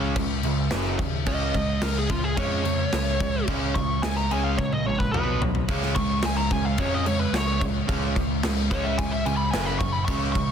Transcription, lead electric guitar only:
1.28 1.81 D#5 loud
1.83 1.96 A#4 medium
1.98 2.10 G#4 medium
2.10 2.24 F4 medium
2.24 2.37 G#4 medium
2.37 3.45 C#5 loud
3.75 4.02 C#6 loud
4.02 4.16 G#5 loud
4.16 4.30 A#5 medium
4.31 4.44 G#5 medium
4.44 4.58 F5 medium
4.57 4.73 C#5 loud
4.73 4.86 D#5 medium
4.86 5.00 C#5 medium
4.99 5.11 B4 medium
5.12 5.40 B4 loud
5.95 6.23 C#6 loud
6.26 6.38 G#5 medium
6.37 6.51 A#5 medium
6.52 6.65 G#5 medium
6.66 6.79 F5 loud
6.80 6.94 C#5 medium
6.94 7.07 D#5 medium
7.07 7.20 C#5 medium
7.20 7.36 B4 medium
7.36 7.62 C#5 loud
8.72 8.85 C#5 loud
8.84 8.98 E5 loud
8.98 9.12 G#5 medium
9.11 9.25 E5 loud
9.25 9.37 G#5 medium
9.37 9.51 B5 loud
9.51 9.66 G#5 loud
9.66 9.78 B5 loud
9.79 9.92 C#6 loud
9.92 10.05 B5 medium
10.05 10.20 C#6 medium
10.32 10.52 C#6 medium

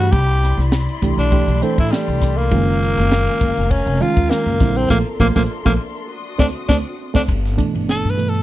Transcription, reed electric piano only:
0.00 0.13 E3 medium
0.00 0.13 A3 medium
0.00 0.13 D4 medium
0.00 0.13 G4 medium
1.02 1.30 E3 medium
1.02 1.31 A3 medium
1.02 1.31 D4 medium
1.02 1.31 G4 medium
1.32 1.60 E3 medium
1.32 1.60 A3 medium
1.32 1.61 D4 medium
1.32 1.60 G4 medium
1.63 2.47 E3 medium
1.63 2.47 A3 medium
1.63 2.47 D4 medium
1.63 2.47 A4 medium
2.51 3.64 D#3 medium
2.51 3.64 G#3 medium
2.51 3.64 C#4 medium
2.51 3.65 F4 medium
4.00 4.57 D#3 medium
4.00 4.57 G#3 medium
4.00 4.57 C#4 medium
4.00 4.57 F4 medium
4.60 4.90 D3 medium
4.60 4.90 G3 medium
4.60 4.90 C4 medium
4.60 4.90 E4 medium
4.90 5.00 F3 medium
4.90 5.00 A3 medium
4.90 5.00 A#3 medium
5.20 5.30 F3 medium
5.20 5.30 A3 medium
5.20 5.30 A#3 medium
5.36 5.44 F3 medium
5.36 5.45 A3 medium
5.36 5.44 A#3 medium
5.65 5.74 F3 medium
5.65 5.74 A3 loud
5.65 5.74 A#3 medium
6.39 6.49 A3 medium
6.39 6.49 C4 medium
6.39 6.49 D4 medium
6.69 6.79 A3 medium
6.69 6.79 C4 medium
6.69 6.79 D4 medium
7.14 7.23 A3 medium
7.14 7.23 C4 medium
7.14 7.23 D4 medium
7.57 8.14 B2 medium
7.57 8.14 E3 medium
7.57 8.15 A3 medium
7.57 8.15 D4 loud
8.17 8.43 B2 medium
8.17 8.43 E3 medium
8.17 8.43 A3 medium
8.17 8.43 B3 medium

